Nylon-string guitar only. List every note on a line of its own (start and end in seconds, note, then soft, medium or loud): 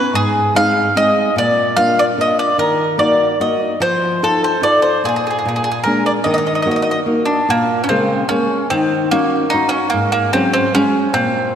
0.13 0.53 G#2 medium
0.55 0.88 G#3 medium
0.55 0.88 C4 soft
0.55 0.88 D#4 medium
0.95 1.28 G#3 soft
0.95 1.28 C4 soft
0.95 1.28 D#4 soft
1.36 1.76 A#2 medium
1.77 2.10 A#3 medium
1.77 2.10 D4 soft
1.77 2.10 F4 medium
2.18 2.51 A#3 soft
2.18 2.51 D4 soft
2.18 2.51 F4 soft
2.58 2.98 D#3 medium
2.98 3.31 A#3 medium
2.98 3.32 D#4 soft
2.98 3.32 F#4 medium
3.40 3.73 A#3 soft
3.40 3.74 D#4 soft
3.40 3.74 F#4 soft
3.80 4.21 F3 medium
4.22 4.55 D#4 medium
4.22 4.55 F4 soft
4.22 4.56 A4 medium
4.61 4.95 D#4 soft
4.61 4.95 F4 soft
4.61 4.96 A4 soft
5.04 5.43 A#2 medium
5.45 5.84 A#2 medium
5.86 6.18 G#3 soft
5.86 6.18 A#3 soft
5.86 6.18 D4 medium
6.26 6.65 D#3 medium
6.66 6.99 A#3 medium
6.66 6.99 D#4 medium
6.66 6.99 F#4 medium
7.06 7.40 A#3 soft
7.06 7.40 D#4 soft
7.06 7.40 F#4 soft
7.49 7.88 A#2 medium
7.90 8.23 C#3 medium
7.90 8.22 G#3 medium
7.90 8.22 A#3 medium
8.30 8.63 G#3 soft
8.30 8.63 A#3 soft
8.30 8.63 C#4 soft
8.71 9.11 D#3 medium
9.12 9.44 C#4 soft
9.12 9.45 D#4 soft
9.12 9.45 F#4 medium
9.53 9.86 C#4 soft
9.53 9.86 D#4 soft
9.53 9.86 F#4 medium
9.93 10.33 G#2 medium
10.33 10.66 F#3 medium
10.33 10.66 G#3 soft
10.33 10.67 C#4 medium
10.74 11.07 F#3 soft
10.74 11.07 G#3 soft
10.74 11.07 C#4 medium
11.13 11.54 A#2 medium